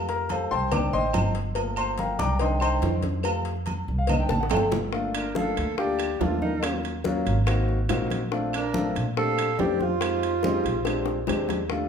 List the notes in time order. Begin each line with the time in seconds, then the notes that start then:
Already playing: F2 G3 A3 F4
0.09 A#4 A#5, cowbell, high conga
0.29 A4 C5 F5 A5, cowbell, high conga, low agogo
0.51 C2 C5 G5 A5 C6, high conga
0.71 D#3 C4 D4 D5 G5 D6, cowbell, high conga, low conga, low agogo, claves
0.93 A1 C5 D#5 G5 C6, high conga
1.13 G1, cowbell, high conga, low timbale, low agogo, claves
1.35 cowbell
1.55 F3 A3 A#3, cowbell, high conga, low agogo
1.76 C5 C6, high conga, low agogo, claves
1.98 A#4 F5 G5 A#5, cowbell, high conga
2.19 C2 D5 G5 A#5 D6, high conga, low agogo
2.39 D3 D#3 C4 D#5 G5 C6 D#6, cowbell, high conga, low agogo
2.60 C5 D#5 G5 C6, high conga, low agogo, claves
2.82 F2, cowbell, high conga, low timbale
3.03 cowbell, high conga
3.23 G3 A3 F4, cowbell, high conga, low agogo, claves
3.45 cowbell, high conga
3.66 cowbell, high conga, low agogo
3.88 C2, high conga
3.98 F5
4.07 D#3 C4 D4 D#5, cowbell, high conga, low conga, low agogo, claves
4.20 G5
4.29 A1 A5, high bongo, high conga, low conga
4.41 F#5, high bongo
4.50 G1 G5, cowbell, high conga, high timbale, low agogo, claves
4.57 low bongo
4.72 cowbell, low bongo, low conga, low timbale
4.93 A3 A#3 D4 F4, high bongo, high conga
5.15 D4 A#4, high conga, high timbale, claves
5.35 A3 A#3 D4 F4 A4 F5, high bongo, high conga, low timbale
5.57 D2, high bongo, high conga, high timbale
5.78 A3 A#3 D4 F4 G4 D5, high bongo, high conga
5.99 high bongo, high conga, high timbale, claves
6.20 D#2 A3 A#3 D4 F4 D5, high bongo, low bongo, high conga, low timbale
6.41 D#4 A#4, high bongo, high conga
6.63 F#3 A#3 C#4 F4, high bongo, high conga, high timbale, claves
6.84 high conga, high timbale
7.04 F#3 A#3 C#4 F4, high bongo, high conga, low timbale
7.26 G#1, high bongo, high conga, high timbale
7.47 A#3 C4 D#4 F#4, high bongo, high conga, high timbale, claves
7.68 high bongo, high conga
7.89 A#1 A#3 C4 D#4 F#4, high bongo, low bongo, high conga, high timbale, low timbale, claves
8.10 high bongo, high conga, high timbale
8.31 A3 C4 D4 F4, high bongo, high conga
8.53 D4 A#4, high conga, high timbale, claves
8.73 A3 C4 D4 F4, high bongo, high conga, low timbale
8.95 A#2, high bongo, high conga, high timbale
9.17 A3 C4 D4 G4 A4 F5, high bongo, high conga
9.38 high bongo, high conga, high timbale, claves
9.58 F2 A3 C4 D4 G4 D5, high bongo, low bongo, high conga, low timbale
9.79 F4 C5, high bongo, high conga
10.01 G#3 C4 D#4 G4, high bongo, high conga, high timbale, claves
10.23 high conga, high timbale
10.43 G#3 C4 D#4 G4, high bongo, high conga, low timbale
10.64 A#1, high bongo, high conga, high timbale
10.85 G#3 C4 D4 G4, high bongo, high conga, high timbale, claves
11.06 high bongo, high conga
11.27 D#2 G#3 C4 D4 G4, low bongo, high conga, high timbale, low timbale, claves
11.49 low bongo, high conga, high timbale
11.70 G3 A3 D4 F4, high bongo, high conga